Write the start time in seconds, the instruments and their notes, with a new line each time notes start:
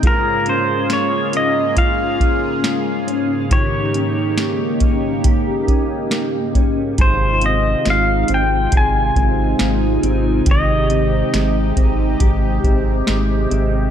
Already playing: clean electric guitar C4
0.02 analog synth pad G#2 C#3 A#3 F4 G#4, clean electric guitar G#3 F4, kick, closed hi-hat
0.07 pedal steel guitar A#4
0.46 clean electric guitar C#4, pedal steel guitar C5, closed hi-hat
0.90 clean electric guitar G#3, pedal steel guitar C#5, snare, closed hi-hat
1.33 clean electric guitar C#4, pedal steel guitar D#5, closed hi-hat
1.77 clean electric guitar F4, pedal steel guitar F5, kick, closed hi-hat
2.21 clean electric guitar C#4, kick, closed hi-hat
2.64 clean electric guitar G#3, snare, closed hi-hat
3.07 clean electric guitar C#4, closed hi-hat
3.51 clean electric guitar D#3 G4, analog synth pad A#3 D#4 G4, pedal steel guitar C#5, kick, closed hi-hat
3.94 clean electric guitar C#4, closed hi-hat
4.37 clean electric guitar A#3, snare, closed hi-hat
4.80 clean electric guitar C#4, kick, closed hi-hat
5.24 clean electric guitar G4, kick, closed hi-hat
5.68 clean electric guitar C#4, kick, closed hi-hat
6.11 clean electric guitar A#3, snare, closed hi-hat
6.55 clean electric guitar C#4, kick, closed hi-hat
6.98 analog synth bass G#1, analog synth pad C3 G#3 D#4 F4, clean electric guitar D#3 G#4, pedal steel guitar C5, kick, closed hi-hat
7.41 clean electric guitar C4, closed hi-hat
7.46 pedal steel guitar D#5
7.85 analog synth bass G#1, clean electric guitar G#3, snare, closed hi-hat
7.90 pedal steel guitar F5
8.28 analog synth bass G#1, clean electric guitar C4, closed hi-hat
8.34 pedal steel guitar G5
8.72 analog synth bass G#1, clean electric guitar G#4, kick, closed hi-hat
8.77 pedal steel guitar G#5
9.16 analog synth bass G#1, clean electric guitar C4, kick, closed hi-hat
9.59 analog synth bass G#1, clean electric guitar G#3, snare, closed hi-hat
10.03 analog synth bass G#1, clean electric guitar C4, closed hi-hat
10.46 analog synth bass G#1, clean electric guitar D#3 G4, analog synth pad G4, kick, closed hi-hat
10.51 pedal steel guitar D#5
10.90 clean electric guitar C4, closed hi-hat
11.34 analog synth bass G#1, clean electric guitar G#3, snare, closed hi-hat
11.76 analog synth bass G#1, clean electric guitar C4, kick, closed hi-hat
12.20 analog synth bass G#1, clean electric guitar G4, kick, closed hi-hat
12.64 analog synth bass G#1, clean electric guitar C4, kick, closed hi-hat
13.07 analog synth bass G#1, clean electric guitar G#3, snare, closed hi-hat
13.50 analog synth bass G#1, clean electric guitar C4, closed hi-hat